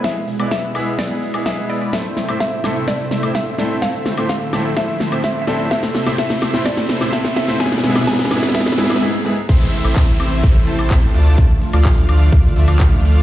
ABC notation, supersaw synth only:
X:1
M:4/4
L:1/16
Q:1/4=127
K:Am
V:1 name="Supersaw synth"
z3 [^G,B,EBe]3 [G,B,EBe]2 [G,B,EBe]2 z3 [G,B,EB^g] [G,B,EBe] [G,B,EBd] | [A,CEce]3 [A,CEce]2 z [A,CEce]2 [A,CEce]3 [A,CEce]2 z [A,CEce]2 | [A,CEce]3 [A,CEce]2 z [A,CEce]2 z3 [A,CEce]2 z [A,CEce]2 | [A,CEce]3 [A,CEce] [A,CEe]3 [A,CEce] [A,Cc]3 [A,CEce] [A,CEce]3 [A,CEce] |
[^G,B,EBe]2 [G,B,EBe]2 [G,B,EBe]2 [G,B,EBe]2 [G,B,EBe]2 [G,B,EBe]2 z4 | [A,CEce]3 [A,CEce]2 z [A,CEce]3 [A,CEce] [A,CEca]4 [A,DFda]2 | z3 [A,DFdf]3 [A,DFdf]2 [A,DFdf]2 [A,DFde] [A,DFdf] [A,Ff]4 |]